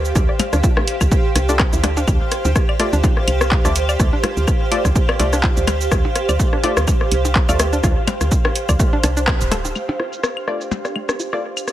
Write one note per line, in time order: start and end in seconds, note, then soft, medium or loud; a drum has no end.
0.00 0.13 D2 medium
0.00 11.72 G4 medium
0.00 11.72 C5 medium
0.00 11.72 F5 loud
0.05 cabasa soft
0.15 0.27 D2 loud
0.15 kick loud
0.15 cross-stick soft
0.15 percussion blips soft
0.15 cabasa medium
0.29 0.31 D5 medium
0.40 closed hi-hat loud
0.40 percussion blips medium
0.40 cabasa soft
0.40 claves medium
0.53 0.62 D2 medium
0.53 0.57 D4 medium
0.53 cross-stick soft
0.53 closed hi-hat soft
0.53 cabasa soft
0.63 0.68 F4 medium
0.63 kick loud
0.63 cabasa medium
0.77 0.81 A3 medium
0.77 cross-stick medium
0.77 percussion blips soft
0.88 closed hi-hat loud
1.01 1.10 D2 medium
1.01 kick medium
1.01 cross-stick soft
1.01 cabasa soft
1.01 claves medium
1.12 kick loud
1.12 cabasa soft
1.35 1.69 C2 medium
1.35 cross-stick soft
1.35 closed hi-hat loud
1.35 percussion blips soft
1.35 cabasa soft
1.49 1.55 A3 medium
1.49 1.53 D4 medium
1.49 1.55 F4 medium
1.49 1.55 D5 medium
1.49 cabasa soft
1.59 1.64 C4 medium
1.59 kick loud
1.59 cross-stick medium
1.59 clap loud
1.59 closed hi-hat soft
1.59 claves medium
1.73 2.05 D2 medium
1.73 1.77 E4 medium
1.73 cabasa soft
1.84 1.88 D4 medium
1.84 cross-stick soft
1.84 closed hi-hat loud
1.84 percussion blips medium
1.84 cabasa soft
1.97 2.01 D4 medium
1.97 percussion blips soft
1.97 cabasa soft
2.08 2.19 D2 loud
2.08 kick loud
2.08 cabasa medium
2.08 claves medium
2.32 cross-stick soft
2.32 closed hi-hat loud
2.32 cabasa soft
2.45 2.54 D2 medium
2.45 percussion blips soft
2.45 cabasa soft
2.56 kick loud
2.56 cross-stick medium
2.56 cabasa medium
2.69 2.71 D5 medium
2.69 claves medium
2.80 2.91 A3 medium
2.80 2.84 A3 medium
2.80 2.91 F4 medium
2.80 2.92 D5 loud
2.80 cross-stick soft
2.80 closed hi-hat medium
2.93 3.02 D2 medium
2.93 2.97 D4 medium
2.93 cabasa soft
3.04 3.08 F4 medium
3.04 kick loud
3.04 percussion blips soft
3.04 percussion blips medium
3.04 cabasa medium
3.17 cross-stick soft
3.28 3.61 C2 medium
3.28 closed hi-hat loud
3.28 cabasa soft
3.28 claves medium
3.41 cross-stick medium
3.41 cabasa soft
3.52 kick loud
3.52 clap loud
3.52 closed hi-hat soft
3.65 3.97 D2 medium
3.65 3.74 A3 medium
3.65 3.74 F4 medium
3.65 3.74 D5 medium
3.65 cross-stick soft
3.65 percussion blips soft
3.65 cabasa medium
3.76 closed hi-hat loud
3.76 cabasa soft
3.89 3.91 D5 medium
3.89 cabasa soft
3.89 claves medium
4.00 4.11 D2 loud
4.00 4.04 A3 medium
4.00 kick loud
4.00 cross-stick soft
4.00 cabasa medium
4.13 4.17 D4 medium
4.24 4.28 F4 medium
4.24 cross-stick medium
4.24 closed hi-hat medium
4.24 percussion blips soft
4.24 percussion blips medium
4.24 cabasa soft
4.37 4.46 D2 medium
4.37 cabasa soft
4.47 kick loud
4.47 cross-stick soft
4.47 cabasa medium
4.47 claves medium
4.71 4.79 A3 loud
4.71 4.79 F4 medium
4.71 4.79 D5 loud
4.71 closed hi-hat medium
4.85 4.94 D2 medium
4.85 kick medium
4.85 cross-stick soft
4.85 percussion blips soft
4.85 cabasa soft
4.96 kick loud
4.96 cabasa medium
5.09 5.11 D5 medium
5.09 cross-stick medium
5.09 claves medium
5.19 5.53 C2 medium
5.19 5.27 A3 loud
5.19 5.24 A3 medium
5.19 5.27 F4 medium
5.19 5.27 D5 loud
5.19 closed hi-hat medium
5.19 cabasa soft
5.33 5.37 D4 medium
5.33 cross-stick soft
5.33 cabasa soft
5.43 5.48 F4 medium
5.43 kick loud
5.43 clap loud
5.43 closed hi-hat soft
5.43 percussion blips soft
5.57 5.89 D2 medium
5.57 cabasa medium
5.67 cross-stick soft
5.67 closed hi-hat medium
5.67 percussion blips medium
5.67 cabasa medium
5.67 claves medium
5.81 cabasa soft
5.91 6.03 D2 loud
5.91 kick loud
5.91 cross-stick medium
5.91 cabasa medium
6.05 percussion blips soft
6.16 cross-stick soft
6.16 closed hi-hat medium
6.16 cabasa soft
6.29 6.38 D2 medium
6.29 6.31 D5 medium
6.29 cabasa soft
6.29 claves medium
6.39 6.44 A3 medium
6.39 kick loud
6.39 cabasa medium
6.53 6.57 D4 medium
6.53 cross-stick soft
6.63 6.75 A3 medium
6.63 6.68 F4 medium
6.63 6.75 F4 medium
6.63 6.75 D5 loud
6.63 closed hi-hat medium
6.63 percussion blips soft
6.77 6.86 D2 medium
6.77 cross-stick medium
6.77 cabasa soft
6.88 kick loud
6.88 percussion blips medium
6.88 cabasa medium
6.88 claves medium
7.01 cross-stick soft
7.11 7.45 C2 medium
7.11 closed hi-hat medium
7.11 cabasa soft
7.25 percussion blips soft
7.25 cabasa soft
7.35 kick loud
7.35 cross-stick soft
7.35 clap loud
7.35 closed hi-hat soft
7.49 7.81 D2 medium
7.49 7.58 A3 medium
7.49 7.58 F4 medium
7.49 7.51 D5 medium
7.49 7.58 D5 medium
7.49 cabasa medium
7.49 claves medium
7.59 7.64 A3 medium
7.59 cross-stick medium
7.59 closed hi-hat medium
7.59 cabasa medium
7.73 7.77 D4 medium
7.73 cabasa soft
7.83 7.95 D2 loud
7.83 7.88 F4 medium
7.83 kick loud
7.83 cross-stick soft
7.83 percussion blips soft
7.83 cabasa medium
8.07 closed hi-hat medium
8.07 percussion blips medium
8.07 cabasa soft
8.07 claves medium
8.21 8.30 D2 loud
8.21 cross-stick soft
8.21 closed hi-hat soft
8.21 cabasa soft
8.31 kick loud
8.31 cabasa medium
8.45 cross-stick medium
8.45 percussion blips soft
8.56 closed hi-hat medium
8.56 cabasa soft
8.69 8.78 D2 medium
8.69 8.71 D5 medium
8.69 kick medium
8.69 cross-stick soft
8.69 cabasa soft
8.69 claves medium
8.79 8.84 A3 medium
8.79 kick loud
8.79 cabasa medium
8.93 8.97 D4 medium
9.04 9.37 C2 medium
9.04 9.11 D4 medium
9.04 cross-stick soft
9.04 closed hi-hat medium
9.04 percussion blips soft
9.04 cabasa soft
9.17 9.19 D4 medium
9.17 cabasa soft
9.27 9.35 C4 loud
9.27 kick loud
9.27 cross-stick medium
9.27 clap loud
9.27 closed hi-hat soft
9.27 claves medium
9.41 9.73 D1 medium
9.41 cabasa medium
9.52 9.54 A4 loud
9.52 cross-stick soft
9.52 closed hi-hat medium
9.52 percussion blips loud
9.52 cabasa medium
9.65 percussion blips soft
9.65 cabasa soft
9.75 9.80 A3 medium
9.75 11.72 D4 medium
9.75 cabasa medium
9.75 claves medium
9.89 9.93 D4 medium
9.89 percussion blips medium
10.00 10.04 F4 medium
10.00 cross-stick soft
10.13 cabasa soft
10.23 cross-stick medium
10.23 cabasa medium
10.37 claves medium
10.47 10.59 A3 medium
10.47 10.59 F4 medium
10.47 10.59 D5 medium
10.47 cross-stick soft
10.61 cabasa soft
10.71 percussion blips medium
10.71 cabasa medium
10.85 10.87 D5 medium
10.85 cross-stick soft
10.85 cabasa soft
10.96 11.00 A3 medium
10.96 claves medium
11.09 11.13 D4 medium
11.09 cross-stick medium
11.09 cabasa soft
11.20 11.24 F4 medium
11.20 cabasa medium
11.33 11.42 A3 medium
11.33 11.42 F4 medium
11.33 11.42 D5 medium
11.33 cross-stick soft
11.57 cabasa soft
11.57 claves medium
11.68 cross-stick soft
11.68 cabasa medium